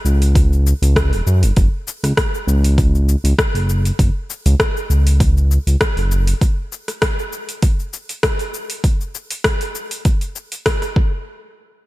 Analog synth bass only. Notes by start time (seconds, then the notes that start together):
0.05 C#2
0.82 C#2
1.12 E1
1.27 F#2
1.43 F#1
1.57 F#1
2.03 C#2
2.47 C#2
3.24 C#2
3.55 F#1
3.99 F#1
4.46 C#2
4.90 C#2
5.67 C#2
5.97 F#1